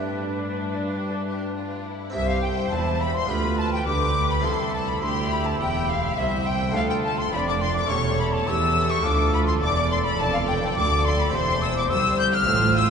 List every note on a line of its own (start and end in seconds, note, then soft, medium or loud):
0.00 1.90 G2 soft
0.00 1.94 G2 medium
0.00 1.90 D4 soft
0.00 1.95 D4 soft
0.00 2.08 D4 soft
0.00 0.32 G4 soft
0.00 2.09 G4 soft
0.00 1.80 B4 medium
0.39 0.66 D4 medium
0.68 0.83 E4 medium
0.85 0.99 F4 medium
0.97 1.12 G4 medium
1.11 1.26 A4 medium
1.26 1.55 G4 medium
1.55 1.84 F4 medium
1.86 2.15 E4 medium
2.10 3.24 C4 medium
2.10 3.25 E4 medium
2.10 3.26 G4 medium
2.10 3.25 C5 medium
2.10 2.29 E5 medium
2.14 2.68 C2 medium
2.14 2.69 C2 medium
2.14 2.69 G4 medium
2.14 2.28 E5 medium
2.27 2.41 F5 medium
2.27 2.44 F5 medium
2.42 2.49 G5 medium
2.42 2.72 G5 medium
2.70 3.29 E1 medium
2.70 3.26 E2 medium
2.70 3.29 E2 medium
2.70 3.02 A5 medium
2.70 3.01 A5 medium
2.74 3.31 E4 medium
3.01 3.16 B5 medium
3.14 3.31 C6 medium
3.14 3.30 C6 medium
3.25 4.39 B3 medium
3.25 4.40 F4 medium
3.25 4.41 G4 medium
3.25 3.60 B5 medium
3.30 3.84 D2 medium
3.30 3.87 D2 medium
3.30 3.86 F4 medium
3.30 4.43 B4 medium
3.30 3.59 B5 medium
3.58 3.72 A5 medium
3.58 3.73 A5 medium
3.73 3.87 G5 medium
3.85 4.44 D2 medium
3.85 4.41 D3 medium
3.85 4.44 D3 medium
3.85 4.45 G4 medium
3.85 4.29 D6 loud
3.85 4.30 D6 medium
4.30 4.45 B5 medium
4.40 6.69 C4 soft
4.40 6.69 E4 soft
4.40 6.70 G4 soft
4.40 4.73 C6 medium
4.44 4.98 C2 medium
4.44 5.03 C2 medium
4.44 6.75 E4 medium
4.44 5.03 A4 medium
4.44 4.52 C6 medium
4.74 4.87 A5 medium
4.74 4.88 A5 medium
4.87 5.02 B5 medium
4.87 5.03 B5 medium
5.02 5.56 D2 medium
5.02 5.59 D2 medium
5.02 5.59 G4 medium
5.02 5.30 C6 medium
5.02 5.09 C6 medium
5.31 5.48 B5 medium
5.31 5.46 B5 medium
5.45 5.60 A5 medium
5.60 6.16 E1 medium
5.60 6.17 E2 medium
5.60 6.14 E2 medium
5.60 6.17 G4 medium
5.60 5.88 G5 medium
5.60 5.91 G5 medium
5.89 6.16 F5 medium
5.89 6.18 F5 medium
6.17 6.74 C2 medium
6.17 6.72 C2 medium
6.17 6.74 C5 medium
6.17 6.44 E5 medium
6.17 6.46 E5 medium
6.45 6.76 G5 medium
6.45 6.75 G5 medium
6.71 7.32 D2 medium
6.71 7.85 A3 medium
6.71 7.86 D4 medium
6.71 7.86 F4 medium
6.71 6.91 F5 medium
6.75 7.33 D2 medium
6.75 7.29 D2 medium
6.75 7.32 F4 medium
6.75 7.33 A4 medium
6.75 6.81 F5 loud
6.89 7.03 G5 medium
6.89 6.96 G5 medium
7.04 7.20 A5 medium
7.04 7.19 A5 medium
7.18 7.31 C6 medium
7.18 7.33 C6 medium
7.32 7.89 F1 medium
7.32 7.89 F2 medium
7.32 7.86 F2 medium
7.32 7.91 D4 medium
7.32 7.90 D5 medium
7.32 7.49 B5 medium
7.32 7.39 B5 medium
7.48 7.63 D6 medium
7.48 7.54 D6 medium
7.61 7.74 C6 medium
7.61 7.76 C6 medium
7.75 7.81 D6 medium
7.75 7.90 D6 medium
7.86 8.46 E1 medium
7.86 8.46 E2 medium
7.86 8.99 A3 medium
7.86 9.00 C#4 medium
7.86 9.01 G4 medium
7.86 7.95 C#6 medium
7.91 8.44 E2 medium
7.91 8.47 A4 medium
7.91 8.48 C#5 medium
7.91 8.19 C#6 loud
8.19 8.35 B5 medium
8.19 8.25 B5 medium
8.33 8.49 A5 medium
8.33 8.48 A5 medium
8.47 9.04 E2 medium
8.47 9.04 E3 medium
8.47 9.01 E3 medium
8.47 9.06 G4 medium
8.47 9.03 A4 medium
8.47 8.92 E6 medium
8.47 8.91 E6 loud
8.91 9.05 C#6 medium
9.02 9.61 D2 medium
9.02 9.59 A3 medium
9.02 11.29 D4 medium
9.02 11.30 F4 medium
9.02 9.63 F4 medium
9.02 9.61 A4 medium
9.02 9.32 D6 medium
9.02 9.34 D6 loud
9.06 9.59 D2 medium
9.33 9.46 B5 medium
9.33 9.39 B5 medium
9.47 9.60 C6 medium
9.47 9.53 C6 medium
9.61 10.18 E1 medium
9.61 10.19 E2 medium
9.61 10.16 E2 medium
9.61 11.92 A4 medium
9.61 10.18 D5 medium
9.61 9.90 D6 medium
9.61 9.90 D6 loud
9.91 10.06 C6 medium
9.91 9.97 C6 medium
10.05 10.17 B5 medium
10.05 10.19 B5 medium
10.18 10.76 F1 medium
10.18 10.76 F2 medium
10.18 10.73 F2 medium
10.18 11.32 D5 medium
10.18 10.33 A5 medium
10.18 10.34 A5 loud
10.33 10.39 F5 medium
10.33 10.48 F5 medium
10.48 10.54 G5 medium
10.48 10.77 G5 medium
10.75 11.34 D2 medium
10.75 11.31 D2 medium
10.75 11.06 D6 medium
10.75 11.05 D6 loud
11.05 11.21 C6 medium
11.05 11.20 C6 loud
11.19 11.32 B5 medium
11.19 11.35 B5 medium
11.30 12.42 C4 medium
11.30 12.43 G4 medium
11.30 12.44 C5 medium
11.30 12.47 C5 medium
11.30 11.63 C6 medium
11.34 11.90 E1 medium
11.34 11.87 E2 medium
11.34 11.91 E2 medium
11.34 11.62 C6 loud
11.62 11.75 E6 medium
11.62 11.78 E6 loud
11.76 11.91 D6 medium
11.76 11.84 D6 loud
11.90 12.44 C2 medium
11.90 12.48 C2 medium
11.90 12.47 G4 medium
11.90 12.18 E6 medium
11.90 12.20 E6 loud
12.19 12.36 G6 medium
12.19 12.26 G6 loud
12.33 12.75 F6 loud
12.33 12.79 F6 medium
12.43 12.90 C4 medium
12.43 12.90 F4 medium
12.43 12.90 C5 medium
12.48 12.90 A1 medium
12.48 12.90 A2 medium
12.48 12.90 F4 medium
12.48 12.90 C5 medium
12.76 12.90 E6 loud
12.76 12.90 E6 medium